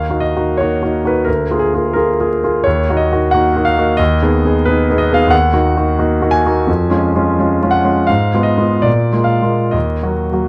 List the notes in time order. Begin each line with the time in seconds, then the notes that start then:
Already playing: D#2 F5
0.09 A#3 D#4 F#4
0.20 D#5
0.36 A#3 D#4 F#4
0.57 A#3 D#4 F#4 C#5
0.82 A#3 D#4 F#4
1.04 A#3 D#4 F#4 B4
1.25 D2 A#4
1.50 A#3 F4 G#4
1.59 G#4
1.74 A#3 F4
1.93 A#3 F4 G#4 A#4
2.20 A#3 F4 G#4
2.43 A#3 F4 G#4
2.64 D#2 C#5
2.89 A#3 D#4 F#4
2.97 D#5
3.12 A#3 D#4 F#4
3.31 A#3 D#4 F#4 F#5
3.56 A#3 D#4 F#4
3.65 F5
3.77 A#3 D#4 F#4
3.97 D#2 D#5
4.22 B3 D#4 G#4
4.45 B3 D#4 G#4
4.65 B3 D#4 G#4 B4
4.90 B3 D#4 G#4
4.98 D#5
5.12 B3 D#4 G#4 F5
5.27 D#2 F#5
5.53 A#3 D#4 F#4
5.77 A#3 D#4 F#4
5.99 A#3 D#4 F#4
6.21 A#3 D#4 F#4
6.31 G#5
6.46 A#3 D#4 F#4
6.67 F2
6.90 G#3 C#4 F4
7.16 G#3 C#4 F4
7.39 G#3 C#4 F4
7.63 G#3 C#4 F4
7.71 F#5
7.84 G#3 C#4 F4
8.07 G#2 F5
8.34 G#3 B3 F4
8.43 D#5
8.58 G#3 B3 F4
8.82 A#2 D5
9.13 G#3 A#3 F4
9.24 F5
9.42 G#3 A#3 F4
9.71 D#2 D#5
10.02 F#3 A#3 F#4
10.32 F#3 A#3 F#4